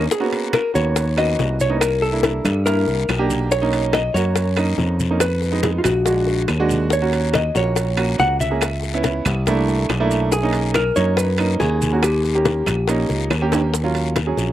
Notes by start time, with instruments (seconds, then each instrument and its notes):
0.11 hollow-body jazz guitar G#4, high bongo, high conga, long guiro, maracas
0.20 grand piano A#3 B3 C#4 F#4
0.32 high bongo, high conga, high timbale, maracas
0.53 hollow-body jazz guitar A#4, high bongo, high conga, high timbale, short guiro, claves, maracas
0.74 fingered electric bass D#2, grand piano A#3 B3 C#4 F#4, hollow-body jazz guitar C#5, high bongo, high conga, short guiro, maracas
0.96 high bongo, high conga, high timbale, long guiro, maracas
1.16 grand piano A#3 B3 C#4 F#4, hollow-body jazz guitar D#5, high bongo, high conga, high timbale, claves, maracas
1.39 fingered electric bass C2, high bongo, low bongo, high conga, low timbale, short guiro, maracas
1.60 hollow-body jazz guitar C#5, high conga, short guiro, maracas
1.70 grand piano A#3 B3 C#4 D#4
1.81 hollow-body jazz guitar A#4, high bongo, high conga, high timbale, long guiro, claves, maracas
2.02 hollow-body jazz guitar A4, high bongo, high conga, maracas
2.13 grand piano A#3 D4 E4
2.23 high bongo, high conga, high timbale, short guiro, maracas
2.45 fingered electric bass G2, high bongo, low conga, high timbale, short guiro, claves, maracas
2.66 grand piano A#3 D4 E4, hollow-body jazz guitar A#4, high bongo, high conga, high timbale, long guiro, maracas
2.87 fingered electric bass C2, high bongo, maracas
3.09 fingered electric bass B1, high bongo, low bongo, high conga, high timbale, short guiro, claves, maracas
3.19 grand piano A#3 D4 G4
3.30 high conga, short guiro, maracas
3.51 hollow-body jazz guitar C#5, high bongo, high conga, long guiro, maracas
3.62 grand piano A#3 C#4 D#4
3.73 high bongo, high conga, high timbale, maracas
3.93 hollow-body jazz guitar D#5, high bongo, high conga, high timbale, short guiro, claves, maracas
4.14 fingered electric bass F#2, grand piano A#3 C#4 F#4, hollow-body jazz guitar C#5, high bongo, high conga, short guiro, maracas
4.36 high bongo, high conga, high timbale, long guiro, maracas
4.57 grand piano A#3 C#4 D#4, high bongo, high conga, high timbale, claves, maracas
4.78 fingered electric bass F2, high bongo, low bongo, high conga, short guiro, maracas
5.00 high conga, short guiro, maracas
5.10 grand piano A#3 C#4 D#4
5.20 hollow-body jazz guitar B4, high bongo, high conga, high timbale, long guiro, claves, maracas
5.42 high bongo, high conga, maracas
5.52 grand piano G#3 B3 D#4
5.63 hollow-body jazz guitar G#4, high bongo, high conga, high timbale, short guiro, maracas
5.78 hollow-body jazz guitar F4
5.84 fingered electric bass A#1, hollow-body jazz guitar F#4, high bongo, low conga, high timbale, short guiro, claves, maracas
6.05 grand piano G#3 D4 F#4, high bongo, high conga, high timbale, long guiro, maracas
6.27 high bongo, maracas
6.48 fingered electric bass D#2, high bongo, low bongo, high timbale, low timbale, short guiro, claves, maracas
6.59 grand piano G#3 D4 F#4
6.69 high conga, short guiro, maracas
6.90 hollow-body jazz guitar C#5, high bongo, high conga, long guiro, maracas
7.02 grand piano A#3 C#4 F#4
7.12 high bongo, high timbale, maracas
7.33 hollow-body jazz guitar D#5, high bongo, high conga, high timbale, short guiro, claves, maracas
7.55 fingered electric bass A#1, grand piano A#3 C#4 F#4, hollow-body jazz guitar C#5, high bongo, short guiro, maracas
7.75 high bongo, high conga, high timbale, long guiro, maracas
7.97 grand piano A#3 C#4 F#4, high bongo, high conga, high timbale, claves, maracas
8.18 fingered electric bass C#2, hollow-body jazz guitar F#5, high bongo, low bongo, high conga, low timbale, short guiro, maracas
8.39 hollow-body jazz guitar E5, high conga, short guiro, maracas
8.51 grand piano A#3 C#4 G#4
8.61 high bongo, high conga, high timbale, long guiro, claves, maracas
8.83 high bongo, high conga, maracas
8.94 grand piano B3 C#4 E4
9.03 high bongo, high conga, high timbale, short guiro, maracas
9.25 fingered electric bass C2, high bongo, low conga, high timbale, short guiro, claves, maracas
9.46 grand piano A3 A#3 D4 E4, high bongo, high conga, low conga, high timbale, long guiro, maracas
9.68 high bongo, high conga, maracas
9.89 fingered electric bass B1, high bongo, low bongo, high conga, high timbale, low timbale, short guiro, claves, maracas
10.00 grand piano A3 A#3 D4 E4
10.11 short guiro, maracas
10.32 hollow-body jazz guitar G#4, high bongo, long guiro, maracas
10.43 grand piano A#3 C#4 D#4
10.53 high bongo, high conga, high timbale, maracas
10.74 hollow-body jazz guitar A#4, high bongo, high conga, high timbale, short guiro, claves, maracas
10.96 fingered electric bass F#2, grand piano A#3 C#4 D#4, hollow-body jazz guitar C#5, high bongo, high conga, short guiro, maracas
11.17 hollow-body jazz guitar B4, high bongo, high conga, high timbale, long guiro, maracas
11.38 grand piano A#3 C#4 D#4, high bongo, high conga, high timbale, claves, maracas
11.60 fingered electric bass D#2, hollow-body jazz guitar G#4, high bongo, low bongo, high conga, low timbale, short guiro, maracas
11.82 high conga, short guiro, maracas
11.93 grand piano A#3 C#4 F#4
12.03 hollow-body jazz guitar G4, high bongo, high conga, high timbale, long guiro, claves, maracas
12.24 high bongo, high conga, maracas
12.35 grand piano A#3 C#4 G4
12.45 high bongo, high conga, high timbale, short guiro, maracas
12.66 fingered electric bass A#1, high bongo, low conga, high timbale, short guiro, claves, maracas
12.88 grand piano A#3 C#4 D#4, high bongo, high conga, high timbale, long guiro, maracas
13.09 fingered electric bass C#2, high bongo, high conga, maracas
13.30 fingered electric bass D#2, high bongo, low bongo, high timbale, low timbale, short guiro, claves, maracas
13.41 grand piano A#3 C#4 G4
13.52 high bongo, low conga, high timbale, short guiro, maracas
13.74 high bongo, long guiro, maracas
13.84 grand piano F#3 C#4 F4
13.95 high bongo, high conga, high timbale, maracas
14.16 high bongo, high conga, high timbale, short guiro, maracas
14.27 grand piano F#3 C#4 G#4
14.37 fingered electric bass A#1, high bongo, high conga, short guiro, maracas